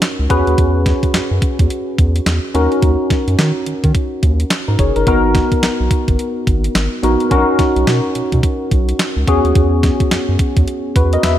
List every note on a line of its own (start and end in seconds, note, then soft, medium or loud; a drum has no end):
0.00 0.29 C#4 medium
0.00 0.32 D#4 medium
0.00 0.30 F#4 medium
0.00 0.32 A#4 loud
0.00 snare loud
0.00 clap medium
0.00 closed hi-hat medium
0.19 0.28 C#2 medium
0.29 0.43 E2 medium
0.29 1.21 C#4 medium
0.29 1.21 F#4 medium
0.29 1.21 G#4 medium
0.29 1.21 B4 medium
0.29 kick medium
0.29 closed hi-hat medium
0.47 0.56 D#2 medium
0.47 closed hi-hat soft
0.58 0.93 E2 loud
0.58 kick loud
0.58 closed hi-hat medium
0.86 kick medium
0.86 snare medium
0.86 closed hi-hat medium
1.03 kick medium
1.03 closed hi-hat soft
1.14 1.21 F#2 soft
1.14 snare loud
1.14 clap medium
1.14 closed hi-hat medium
1.31 1.40 F#2 medium
1.42 kick medium
1.42 closed hi-hat medium
1.59 1.68 E2 medium
1.59 kick medium
1.59 closed hi-hat medium
1.70 closed hi-hat medium
1.98 2.20 E2 medium
1.98 kick medium
1.98 closed hi-hat medium
2.16 closed hi-hat medium
2.26 2.40 E2 medium
2.26 snare loud
2.26 clap medium
2.26 closed hi-hat medium
2.54 2.68 D#2 medium
2.54 3.45 C#4 medium
2.54 3.46 D#4 medium
2.54 3.46 F#4 medium
2.54 3.46 A#4 medium
2.54 closed hi-hat medium
2.72 closed hi-hat soft
2.82 2.96 D#2 loud
2.82 kick loud
2.82 closed hi-hat medium
3.10 kick medium
3.10 snare medium
3.10 closed hi-hat medium
3.28 3.36 F#2 medium
3.28 closed hi-hat soft
3.39 3.52 D#3 medium
3.39 snare loud
3.39 clap medium
3.39 closed hi-hat medium
3.66 3.74 D#3 soft
3.66 closed hi-hat medium
3.84 3.92 D#3 loud
3.84 kick medium
3.84 closed hi-hat medium
3.95 kick medium
3.95 closed hi-hat medium
4.23 4.45 D#2 loud
4.23 kick medium
4.23 closed hi-hat medium
4.40 closed hi-hat medium
4.50 snare loud
4.50 clap loud
4.50 closed hi-hat medium
4.68 4.77 G#2 medium
4.68 4.79 D#4 medium
4.68 4.78 A#4 medium
4.79 4.92 F#1 medium
4.79 4.96 G#4 medium
4.79 4.95 C#5 medium
4.79 kick medium
4.79 closed hi-hat medium
4.96 5.05 G1 medium
4.96 5.06 D#4 medium
4.96 5.07 A#4 medium
4.96 closed hi-hat soft
5.07 5.42 G#1 loud
5.07 5.91 B3 medium
5.07 5.91 D#4 medium
5.07 5.91 F#4 medium
5.07 5.91 A#4 medium
5.07 kick loud
5.07 closed hi-hat medium
5.35 kick medium
5.35 snare medium
5.35 closed hi-hat medium
5.52 kick medium
5.52 closed hi-hat soft
5.63 5.70 B1 soft
5.63 snare loud
5.63 clap medium
5.63 closed hi-hat medium
5.80 5.89 B1 medium
5.91 kick medium
5.91 closed hi-hat medium
6.08 6.17 G#1 medium
6.08 kick medium
6.08 closed hi-hat medium
6.19 closed hi-hat medium
6.47 6.69 G#1 medium
6.47 kick medium
6.47 closed hi-hat medium
6.64 closed hi-hat medium
6.75 6.88 G#1 medium
6.75 snare loud
6.75 clap medium
6.75 closed hi-hat medium
7.03 7.16 A#1 medium
7.03 7.25 B3 medium
7.03 7.26 D#4 medium
7.03 7.26 F#4 medium
7.03 7.26 A#4 medium
7.03 closed hi-hat medium
7.20 closed hi-hat soft
7.31 7.44 B1 medium
7.31 8.15 C#4 medium
7.31 7.39 D4 medium
7.31 8.15 F#4 medium
7.31 8.15 A#4 medium
7.31 kick loud
7.31 closed hi-hat medium
7.37 8.18 D#4 medium
7.59 kick medium
7.59 snare medium
7.59 closed hi-hat medium
7.76 7.85 B1 medium
7.76 closed hi-hat soft
7.87 8.01 B2 medium
7.87 snare loud
7.87 clap medium
7.87 closed hi-hat medium
8.15 8.22 B2 soft
8.15 closed hi-hat medium
8.32 8.41 B2 medium
8.32 kick medium
8.32 closed hi-hat soft
8.43 kick medium
8.43 closed hi-hat medium
8.71 8.93 B1 loud
8.71 kick medium
8.71 closed hi-hat medium
8.89 closed hi-hat medium
8.99 snare loud
8.99 clap loud
8.99 closed hi-hat medium
9.17 9.25 C#2 medium
9.27 9.41 E2 loud
9.27 10.18 B3 medium
9.27 10.19 C#4 medium
9.27 10.19 F#4 medium
9.27 10.19 G#4 medium
9.27 kick medium
9.27 closed hi-hat medium
9.44 9.53 D#2 medium
9.44 closed hi-hat soft
9.55 9.90 E2 loud
9.55 kick loud
9.55 closed hi-hat medium
9.83 kick medium
9.83 snare medium
9.83 closed hi-hat medium
10.00 kick medium
10.00 closed hi-hat soft
10.11 10.19 F#2 soft
10.11 snare loud
10.11 clap medium
10.11 closed hi-hat medium
10.29 10.37 F#2 medium
10.39 kick medium
10.39 closed hi-hat medium
10.57 10.65 E2 loud
10.57 kick medium
10.57 closed hi-hat medium
10.68 closed hi-hat medium
10.96 11.17 E2 medium
10.96 11.13 F#4 medium
10.96 11.12 B4 medium
10.96 kick medium
10.96 closed hi-hat medium
11.13 11.24 A#4 medium
11.13 11.23 D#5 medium
11.13 closed hi-hat medium
11.23 11.37 E2 loud
11.23 11.39 B4 medium
11.23 11.39 E5 medium
11.23 snare loud
11.23 clap medium
11.23 closed hi-hat medium